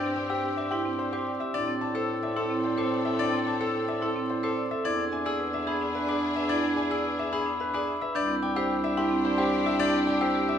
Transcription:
Already playing: bass clarinet G2, french horn C4, string section C4 G4
0.03 marimba C4
0.16 marimba D5, grand piano G5, glockenspiel D6
0.30 grand piano G4, marimba C5, glockenspiel E6
0.44 marimba G4
0.57 marimba D5, grand piano E5, glockenspiel D6
0.71 marimba E4, grand piano G4, glockenspiel C6
0.86 marimba C4
0.99 grand piano C5, marimba D5, glockenspiel C6
1.13 grand piano G4, marimba C5, glockenspiel D6
1.27 marimba D5
1.40 marimba G4, grand piano E5, glockenspiel E6
1.54 bass clarinet A2, french horn C4, string section C4 A4, marimba D4, grand piano D5, glockenspiel A6
1.68 marimba C4
1.81 marimba D5, grand piano A5, glockenspiel D6
1.95 grand piano A4, marimba C5, glockenspiel E6
2.09 marimba A4
2.23 marimba D5, grand piano E5, glockenspiel D6
2.36 marimba E4, grand piano A4, glockenspiel C6
2.50 marimba C4
2.64 grand piano C5, marimba D5, glockenspiel C6
2.77 grand piano A4, marimba C5, glockenspiel D6
2.91 marimba D5
3.05 marimba A4, grand piano E5, glockenspiel E6
3.19 marimba D4, grand piano D5, glockenspiel A6
3.33 marimba C4
3.47 marimba D5, grand piano A5, glockenspiel D6
3.61 grand piano A4, marimba C5, glockenspiel E6
3.74 marimba A4
3.88 marimba D5, grand piano E5, glockenspiel D6
4.02 marimba E4, grand piano A4, glockenspiel C6
4.16 marimba C4
4.29 grand piano C5, marimba D5, glockenspiel C6
4.43 grand piano A4, marimba C5, glockenspiel D6
4.57 marimba D5
4.71 marimba A4, grand piano E5, glockenspiel E6
4.85 bass clarinet E2, string section D4 G#4, french horn D4, marimba E4, grand piano D5, glockenspiel G#6
4.98 marimba D4
5.12 marimba E5, grand piano G#5, glockenspiel D6
5.26 grand piano G#4, marimba D5, glockenspiel E6
5.39 marimba B4
5.53 marimba E5, grand piano E5, glockenspiel D6
5.67 grand piano G#4, marimba G#4, glockenspiel B5
5.81 marimba D4
5.95 grand piano B4, marimba E5, glockenspiel B5
6.08 grand piano G#4, marimba D5, glockenspiel D6
6.22 marimba E5
6.36 marimba B4, grand piano E5, glockenspiel E6
6.49 marimba E4, grand piano D5, glockenspiel G#6
6.64 marimba D4
6.77 marimba E5, grand piano G#5, glockenspiel D6
6.91 grand piano G#4, marimba D5, glockenspiel E6
7.05 marimba B4
7.19 marimba E5, grand piano E5, glockenspiel D6
7.33 marimba G#4, grand piano G#4, glockenspiel B5
7.46 marimba D4
7.60 grand piano B4, marimba E5, glockenspiel B5
7.74 grand piano G#4, marimba D5, glockenspiel D6
7.87 marimba E5
8.01 marimba B4, grand piano E5, glockenspiel E6
8.14 bass clarinet C2, french horn D4, string section D4 G4, marimba D4, grand piano D5, glockenspiel G6
8.29 marimba C4
8.43 marimba D5, grand piano G5, glockenspiel D6
8.56 grand piano G4, marimba C5, glockenspiel E6
8.70 marimba G4
8.84 marimba D5, grand piano E5, glockenspiel D6
8.97 marimba E4, grand piano G4, glockenspiel C6
9.11 marimba C4
9.25 grand piano C5, marimba D5, glockenspiel C6
9.38 grand piano G4, marimba C5, glockenspiel D6
9.52 marimba D5
9.66 marimba G4, grand piano E5, glockenspiel E6
9.80 marimba D4, grand piano D5, glockenspiel G6
9.93 marimba C4
10.07 marimba D5, grand piano G5, glockenspiel D6
10.21 grand piano G4, marimba C5, glockenspiel E6
10.35 marimba G4
10.49 marimba D5, grand piano E5, glockenspiel D6

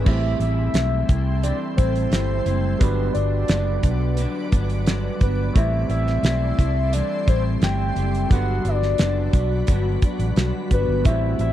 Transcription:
0.04 fingered electric bass A1, clean electric guitar A2 E3 G3 C4 E4, upright piano A3 C4 E4 G4, ambient pad A4 E5 G5 C6, soft synth lead E5, kick, crash
0.09 upright piano C5
0.40 fingered electric bass A1, clean electric guitar G3 C4 E4, soft synth lead E5, closed hi-hat
0.74 fingered electric bass B1, clean electric guitar A2 E3 G3 C4 E4, snare, closed hi-hat
1.09 fingered electric bass C2, clean electric guitar G3 C4 E4, kick, closed hi-hat
1.43 clean electric guitar E3 G3 C4 E4, soft synth lead D5, closed hi-hat
1.77 fingered electric bass A1, clean electric guitar G3 C4 E4, soft synth lead C5, kick, closed hi-hat
1.95 closed hi-hat
2.11 fingered electric bass G1, clean electric guitar A2 E3 G3 C4 E4, upright piano A3 C4 E4 G4 C5, soft synth lead C5, snare, closed hi-hat
2.46 fingered electric bass F#1, clean electric guitar G3 C4 E4, closed hi-hat
2.79 fingered electric bass G1, clean electric guitar G2 D3 F#3 B3 D4, upright piano G3 B3 D4 F#4, soft synth lead B4, ambient pad B4 D5 F#5 D6, kick, closed hi-hat
2.84 upright piano B4
3.14 fingered electric bass G1, clean electric guitar F#3 B3 D4, soft synth lead D5, closed hi-hat
3.48 fingered electric bass F#1, clean electric guitar D3 F#3 B3 D4, snare, closed hi-hat
3.83 fingered electric bass B1, clean electric guitar F#3 B3 D4, kick, closed hi-hat
4.17 clean electric guitar D3 F#3 B3 D4, closed hi-hat
4.52 fingered electric bass G1, clean electric guitar F#3 B3 D4, kick, closed hi-hat
4.70 closed hi-hat
4.86 clean electric guitar G2 D3 F#3 B3 D4, snare, closed hi-hat
5.21 fingered electric bass G1, clean electric guitar B3 D4, soft synth lead B4, kick, closed hi-hat
5.25 clean electric guitar F#3
5.54 fingered electric bass A1, clean electric guitar A2 E3 G3 C4 E4, upright piano A3 C4 E4 G4, ambient pad A4 E5 C6, soft synth lead E5, kick, closed hi-hat
5.59 upright piano C5
5.89 fingered electric bass A1, clean electric guitar G3 C4 E4, soft synth lead E5, closed hi-hat
6.07 snare
6.23 fingered electric bass B1, clean electric guitar A2 E3 G3 C4 E4, snare, closed hi-hat
6.59 fingered electric bass C2, clean electric guitar G3 C4 E4, kick, closed hi-hat
6.93 clean electric guitar E3 G3 C4 E4, soft synth lead D5, closed hi-hat
7.27 fingered electric bass A1, clean electric guitar G3 C4 E4, soft synth lead C5, kick, closed hi-hat
7.61 fingered electric bass G1, clean electric guitar A2 E3 G3 C4 E4, soft synth lead G5, snare, closed hi-hat
7.96 fingered electric bass F#1, clean electric guitar G3 C4 E4, closed hi-hat
8.15 closed hi-hat
8.28 fingered electric bass G1, clean electric guitar G2 D3, upright piano G3 B3 D4 F#4, ambient pad F#4 D5 F#5 B5, kick, closed hi-hat
8.33 clean electric guitar F#3 B3 D4, upright piano B4, soft synth lead F#5
8.65 fingered electric bass G1, clean electric guitar F#3 B3 D4, soft synth lead D5, closed hi-hat
8.82 snare
8.98 fingered electric bass F#1, clean electric guitar D3 F#3 B3 D4, snare, closed hi-hat
9.33 fingered electric bass B1, clean electric guitar F#3 B3 D4, kick, closed hi-hat
9.67 fingered electric bass G1, clean electric guitar D3 F#3 B3 D4, kick, closed hi-hat
10.02 clean electric guitar F#3 B3 D4, muted fingered electric bass stroke, kick, closed hi-hat
10.19 fingered electric bass A1, closed hi-hat
10.36 fingered electric bass B1, clean electric guitar G2 D3 F#3 B3 D4, snare, closed hi-hat
10.70 fingered electric bass G1, clean electric guitar F#3 B3 D4, upright piano G3 B3 D4 F#4 B4, soft synth lead B4, kick, closed hi-hat
10.88 fingered electric bass G1
11.03 fingered electric bass A1, clean electric guitar A2 E3 G3 C4 E4, upright piano A3 C4 E4, ambient pad A4 E5 G5 C6, soft synth lead E5, kick, closed hi-hat
11.08 upright piano G4 C5
11.39 fingered electric bass A1, clean electric guitar G3 C4 E4, soft synth lead E5, closed hi-hat

